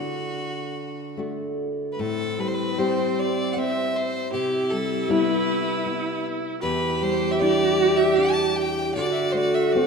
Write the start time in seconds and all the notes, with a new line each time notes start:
Already playing: D3 A3 F#4
0.00 D4
1.17 A3 D4 F#4
1.92 B4
1.98 A2 C4 A4
2.38 G3 B4
2.48 C5
2.54 B4
2.78 G3 C4 G4 C5
3.20 D5
3.54 C4 F#5
3.58 E5
3.96 C5
4.32 C3 E4 G4
4.70 G3 A4
5.08 G3 B3 E4 B4
5.86 B3
6.61 E2 G4 B4
7.01 G3 C5
7.32 E5
7.39 G3 D4 E4 D5
7.97 E5
8.16 D4 A5
8.56 G5
8.94 D3 F#4 D5
9.12 D5 E5
9.32 A3 C5
9.37 D5
9.54 E5
9.73 A3 C4 F#4 D5